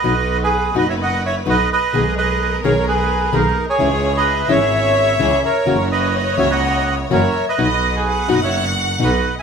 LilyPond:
<<
  \new Staff \with { instrumentName = "Violin section" } { \time 4/4 \key b \major \tempo 4 = 127 b'1 | ais'1 | cis''4 e''2. | cis''2. e''4 |
dis''4 fis''2. | }
  \new Staff \with { instrumentName = "Bandoneon" } { \time 4/4 \key b \major <b' dis''>8. <gis' b'>8. <b' dis''>16 <cis'' e''>16 <dis'' fis''>8 <cis'' e''>8 <b' dis''>8 <b' dis''>8~ | <b' dis''>8 <b' dis''>4 <ais' cis''>8 <gis' b'>4 <dis' ais'>8. <gis' cis''>16~ | <gis' cis''>8. <b' dis''>8. <cis'' e''>2 <ais' cis''>8~ | <ais' cis''>8 <b' dis''>4 <cis'' e''>16 <dis'' fis''>4 r16 <ais' cis''>8. <b' dis''>16~ |
<b' dis''>8. <gis' b'>8. <b' dis''>16 <cis'' e''>8 r8. <b' dis''>8. gis''16 | }
  \new Staff \with { instrumentName = "String section" } { \time 4/4 \key b \major <b dis' fis'>4. <b dis' fis'>4. <b dis' fis'>8 r8 | <gis b gis'>4. <gis b gis'>4. <ais b gis'>8 r8 | <cis' e' gis'>4. <cis' e' gis'>4. <cis' e' gis'>8 r8 | <cis' e' fis'>4. <ais e' fis'>4. <ais e' fis'>8 r8 |
<b dis' fis'>4. <b dis' fis'>4. <b dis' fis'>8 r8 | }
  \new Staff \with { instrumentName = "Nylon-string guitar" } { \time 4/4 \key b \major <b, fis b dis' fis'>8 r4 <b, fis b dis' fis'>8 r4 <b, fis b dis' fis'>8 r8 | <b, dis ais b gis'>8 r4 <b, dis ais b gis'>8 r4 <b, dis ais b gis'>8 r8 | <cis e gis cis' e'>8 r4 <cis e gis cis' e'>8 r4 <cis e gis cis' e'>8 r8 | <cis e ais cis' fis'>8 r4 <cis e ais cis' fis'>8 r4 <cis e ais cis' fis'>8 r8 |
<b, fis b dis' fis'>8 r4 <b, fis b dis' fis'>8 r4 <b, fis b dis' fis'>8 r8 | }
  \new Staff \with { instrumentName = "Double bass" } { \clef bass \time 4/4 \key b \major b,,4. fis,,4. b,,8 r8 | b,,4. b,,4. b,,8 r8 | cis,4. gis,,4. cis,8 r8 | fis,,4. cis,4. fis,,8 r8 |
b,,4. fis,,4. b,,8 r8 | }
>>